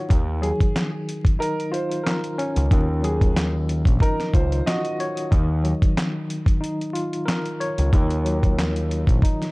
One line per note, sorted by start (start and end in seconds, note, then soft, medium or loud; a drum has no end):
0.00 0.12 D#4 loud
0.00 0.10 F4 medium
0.00 0.11 F#4 medium
0.00 0.10 C#5 loud
0.09 0.51 D#2 loud
0.09 2.70 D#3 loud
0.09 kick loud
0.09 closed hi-hat loud
0.42 3.01 F#3 medium
0.42 0.90 G#4 medium
0.42 closed hi-hat medium
0.60 kick medium
0.60 closed hi-hat medium
0.76 snare loud
0.76 clap loud
0.76 closed hi-hat loud
1.09 closed hi-hat medium
1.25 kick medium
1.25 closed hi-hat medium
1.39 4.00 D#4 medium
1.39 1.69 A#4 medium
1.39 closed hi-hat medium
1.60 closed hi-hat soft
1.72 4.33 F4 medium
1.72 2.02 C5 medium
1.72 closed hi-hat medium
1.91 closed hi-hat soft
2.04 4.66 A#4 loud
2.04 snare medium
2.04 closed hi-hat loud
2.08 clap medium
2.24 closed hi-hat soft
2.38 4.99 C#4 loud
2.38 closed hi-hat medium
2.56 2.68 C#2 medium
2.56 closed hi-hat medium
2.71 3.83 D#2 loud
2.71 5.30 D#3 medium
2.71 kick loud
2.71 closed hi-hat medium
3.02 5.31 F#3 medium
3.02 3.51 G#4 medium
3.02 closed hi-hat medium
3.21 kick medium
3.21 closed hi-hat medium
3.36 snare loud
3.36 clap loud
3.36 closed hi-hat loud
3.69 closed hi-hat medium
3.85 3.98 A#1 medium
3.85 kick medium
3.85 closed hi-hat medium
4.00 5.32 D#4 loud
4.00 4.31 A#4 medium
4.00 kick medium
4.00 closed hi-hat medium
4.20 snare soft
4.20 closed hi-hat soft
4.34 4.60 C#2 medium
4.34 5.32 F4 medium
4.34 4.63 C5 medium
4.34 kick medium
4.34 closed hi-hat medium
4.52 closed hi-hat soft
4.66 5.32 F#4 loud
4.66 4.96 D#5 medium
4.66 snare loud
4.66 clap medium
4.66 closed hi-hat loud
4.85 closed hi-hat soft
5.00 5.32 C#5 loud
5.00 closed hi-hat medium
5.17 closed hi-hat medium
5.31 5.72 D#2 loud
5.31 7.92 D#3 loud
5.31 kick loud
5.31 closed hi-hat loud
5.63 8.23 F#3 medium
5.63 closed hi-hat medium
5.82 kick medium
5.82 closed hi-hat medium
5.97 snare loud
5.97 clap loud
5.97 closed hi-hat loud
6.30 closed hi-hat medium
6.46 kick medium
6.46 closed hi-hat medium
6.61 9.22 D#4 medium
6.61 closed hi-hat medium
6.81 closed hi-hat soft
6.93 9.52 F4 medium
6.93 closed hi-hat medium
7.13 closed hi-hat medium
7.26 9.52 A#4 medium
7.26 snare loud
7.26 clap medium
7.26 closed hi-hat loud
7.46 closed hi-hat soft
7.60 9.52 C#5 loud
7.60 closed hi-hat medium
7.78 7.90 C#2 medium
7.78 closed hi-hat medium
7.93 9.04 D#2 loud
7.93 9.52 D#3 medium
7.93 kick loud
7.93 closed hi-hat medium
8.10 closed hi-hat soft
8.25 9.52 F#3 medium
8.25 closed hi-hat medium
8.43 kick medium
8.43 closed hi-hat medium
8.58 snare loud
8.58 clap loud
8.58 closed hi-hat loud
8.76 closed hi-hat soft
8.91 closed hi-hat medium
9.07 9.20 A#1 medium
9.07 kick medium
9.07 closed hi-hat medium
9.22 9.52 D#4 loud
9.22 kick medium
9.22 closed hi-hat medium
9.42 snare soft
9.42 closed hi-hat soft